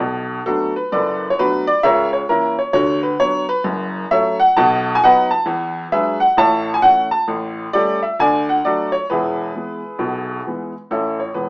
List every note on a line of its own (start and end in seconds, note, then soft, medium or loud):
0.00 0.39 B1 medium
0.00 0.39 B2 medium
0.46 0.72 F#3 soft
0.46 0.72 A3 soft
0.46 0.72 B3 soft
0.46 0.74 D4 medium
0.46 0.74 F#4 medium
0.46 0.71 A4 medium
0.76 0.90 B4 medium
0.92 1.31 F#1 medium
0.92 1.31 F#2 medium
0.92 1.28 A4 medium
0.92 1.28 B4 medium
0.92 1.24 D5 medium
1.30 1.38 C#5 medium
1.39 1.64 F#3 soft
1.39 1.64 A3 soft
1.39 1.65 B3 medium
1.39 1.66 D4 medium
1.39 1.66 F#4 medium
1.39 1.64 B4 loud
1.67 1.81 D5 loud
1.83 2.22 C#2 medium
1.83 2.22 C#3 medium
1.83 2.11 A#4 medium
1.83 2.12 C#5 medium
1.83 2.08 E5 loud
2.13 2.27 C#5 medium
2.29 2.54 E3 soft
2.29 2.55 A#3 medium
2.29 2.57 C#4 medium
2.29 2.57 E4 medium
2.29 2.54 A#4 medium
2.59 2.72 C#5 medium
2.73 3.12 D2 medium
2.73 3.13 D3 medium
2.73 3.02 F#4 medium
2.73 2.99 C#5 loud
3.03 3.17 B4 medium
3.20 3.45 F#3 medium
3.20 3.45 B3 soft
3.20 3.45 D4 medium
3.20 3.45 C#5 loud
3.49 3.63 B4 loud
3.64 4.04 F#1 medium
3.64 4.03 F#2 medium
4.11 4.36 F#3 medium
4.11 4.36 A3 medium
4.11 4.36 C#4 medium
4.11 4.38 A4 medium
4.11 4.39 C#5 medium
4.11 4.36 E5 loud
4.40 4.53 F#5 loud
4.57 4.95 B1 medium
4.57 4.95 B2 medium
4.57 4.92 D#5 medium
4.57 4.92 F#5 medium
4.57 4.88 A5 loud
4.95 5.02 G#5 loud
5.04 5.28 F#3 medium
5.04 5.29 B3 medium
5.04 5.29 D#4 medium
5.04 5.31 B4 medium
5.04 5.30 D#5 medium
5.04 5.27 F#5 loud
5.31 5.44 A5 medium
5.46 5.85 E2 medium
5.46 5.85 E3 medium
5.92 6.17 F#3 medium
5.92 6.17 G#3 medium
5.92 6.17 D4 medium
5.92 6.20 G#4 medium
5.92 6.19 B4 medium
5.92 6.17 E5 loud
6.20 6.34 F#5 medium
6.37 6.76 A1 medium
6.37 6.76 A2 medium
6.37 6.73 C#5 medium
6.37 6.72 E5 medium
6.37 6.69 A5 loud
6.74 6.82 G#5 medium
6.82 7.08 E3 soft
6.82 7.08 A3 medium
6.82 7.08 C#4 medium
6.82 7.07 F#5 loud
7.11 7.25 A5 medium
7.28 7.67 A1 medium
7.28 7.67 A2 medium
7.73 7.98 G3 soft
7.73 7.98 A3 soft
7.73 7.99 C#4 medium
7.73 8.01 G4 medium
7.73 8.01 A4 medium
7.73 7.98 D5 loud
8.03 8.16 E5 medium
8.20 8.58 D2 medium
8.20 8.59 D3 medium
8.20 8.48 D5 medium
8.20 8.44 G#5 loud
8.49 8.62 F#5 medium
8.65 8.90 F#3 soft
8.65 8.90 A3 medium
8.65 8.91 D4 medium
8.65 8.93 F#4 medium
8.65 8.92 A4 medium
8.65 8.89 D5 medium
8.92 9.06 C#5 medium
9.10 9.49 E1 medium
9.10 9.49 E2 medium
9.10 10.73 E4 medium
9.10 10.72 G#4 medium
9.10 10.50 B4 medium
9.55 9.80 E3 soft
9.55 9.80 G#3 soft
9.55 9.80 B3 soft
9.99 10.38 B1 medium
9.99 10.38 B2 medium
10.47 10.71 E3 soft
10.47 10.72 G#3 soft
10.47 10.72 B3 medium
10.91 11.28 A1 medium
10.91 11.27 A2 medium
10.91 11.19 C#4 medium
10.91 11.19 E4 medium
10.91 11.16 A4 medium
11.20 11.34 C#5 medium
11.34 11.49 E1 medium
11.34 11.49 E2 medium
11.34 11.49 B4 medium